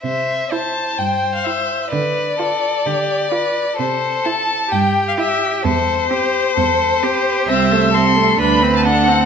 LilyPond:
<<
  \new Staff \with { instrumentName = "Violin" } { \time 4/4 \key c \major \tempo 4 = 130 c''4 a''4 g''8. f''16 e''4 | d''1 | c''4 a''4 g''8. f''16 e''4 | c''1 |
\key a \dorian e''4 c'''4 b''8. a''16 fis''4 | }
  \new Staff \with { instrumentName = "Violin" } { \time 4/4 \key c \major e''4 c''4 c''2 | b'4 a'4 g'4 b'4 | a'2 g'2 | a'4 g'4 a'4 g'4 |
\key a \dorian c''4 a'4 b'4 a'4 | }
  \new Staff \with { instrumentName = "Viola" } { \time 4/4 \key c \major r4 e'4 r4 e'4 | r4 f'4 r4 f'4 | r4 e'4 r4 e'4 | r4 c'4 r4 c'4 |
\key a \dorian c'8 a8 c'8 a8 d'8 c'8 d'8 c'8 | }
  \new Staff \with { instrumentName = "Cello" } { \clef bass \time 4/4 \key c \major c4 r4 g,4 r4 | d4 r4 d4 r4 | c4 r4 g,4 r4 | e,4 r4 e,4 r4 |
\key a \dorian c,2 d,2 | }
>>